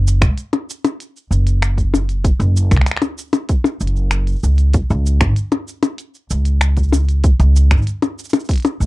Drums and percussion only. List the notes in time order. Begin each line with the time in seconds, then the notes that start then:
0.07 cabasa
0.22 finger snap, kick, closed hi-hat, cabasa
0.38 closed hi-hat, cabasa
0.53 closed hi-hat, percussion blips
0.70 cabasa
0.85 closed hi-hat, percussion blips, cabasa
1.00 closed hi-hat, cabasa
1.17 cabasa
1.32 cabasa
1.47 closed hi-hat, cabasa
1.62 finger snap, closed hi-hat, cabasa
1.78 kick, closed hi-hat, cabasa
1.94 percussion blips, cabasa
2.09 closed hi-hat, cabasa
2.24 kick, closed hi-hat, cabasa
2.40 closed hi-hat, cabasa
2.57 cabasa
2.71 finger snap, kick, closed hi-hat, cabasa
2.77 finger snap
2.81 finger snap
2.86 finger snap, closed hi-hat, cabasa
2.91 finger snap
2.97 finger snap
3.02 closed hi-hat, percussion blips, cabasa
3.18 cabasa
3.33 closed hi-hat, percussion blips, cabasa
3.49 kick, closed hi-hat, cabasa
3.64 percussion blips, cabasa
3.81 cabasa
3.87 closed hi-hat
3.96 cabasa
4.11 finger snap, closed hi-hat, cabasa
4.27 closed hi-hat, cabasa
4.32 cabasa
4.36 cabasa
4.39 cabasa
4.43 cabasa
4.51 cabasa
4.55 closed hi-hat, cabasa
4.59 cabasa
4.74 kick, closed hi-hat, cabasa
4.90 cabasa
5.06 cabasa
5.21 finger snap, kick, closed hi-hat, cabasa
5.36 closed hi-hat, cabasa
5.52 closed hi-hat, percussion blips
5.68 cabasa
5.83 closed hi-hat, percussion blips, cabasa
5.98 closed hi-hat, cabasa
6.15 cabasa
6.30 cabasa
6.45 closed hi-hat, cabasa
6.61 finger snap, closed hi-hat, cabasa
6.77 kick, closed hi-hat, cabasa
6.83 cabasa
6.88 cabasa
6.92 percussion blips, cabasa
7.04 cabasa
7.09 closed hi-hat, cabasa
7.24 kick, closed hi-hat, cabasa
7.40 closed hi-hat, cabasa
7.56 cabasa
7.71 finger snap, kick, closed hi-hat, cabasa
7.77 cabasa
7.82 cabasa
7.87 closed hi-hat, cabasa
8.02 closed hi-hat, percussion blips, cabasa
8.19 cabasa
8.24 cabasa
8.30 closed hi-hat, percussion blips, cabasa
8.34 cabasa
8.40 cabasa
8.45 cabasa
8.49 kick, closed hi-hat, cabasa
8.51 closed hi-hat
8.54 closed hi-hat
8.56 closed hi-hat
8.58 closed hi-hat
8.60 closed hi-hat
8.62 closed hi-hat
8.65 closed hi-hat, percussion blips, cabasa
8.81 cabasa